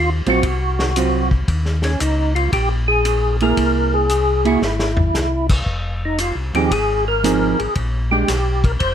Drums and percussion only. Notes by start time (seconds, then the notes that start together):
0.26 ride
0.43 kick, ride
0.79 snare
0.96 hi-hat pedal, ride
1.31 kick
1.48 kick, ride
1.65 snare
1.82 snare, ride
2.00 hi-hat pedal, ride
2.36 ride
2.53 kick, ride
3.05 hi-hat pedal, ride
3.40 ride
3.57 kick, ride
4.09 hi-hat pedal, ride
4.45 ride
4.62 snare
4.79 snare
4.97 floor tom
5.14 snare, hi-hat pedal
5.49 kick, crash
5.66 kick
6.18 hi-hat pedal, ride
6.54 ride
6.71 kick, ride
7.24 hi-hat pedal, ride
7.59 ride
7.75 kick, ride
8.28 snare, hi-hat pedal, ride
8.64 kick, ride
8.80 kick, ride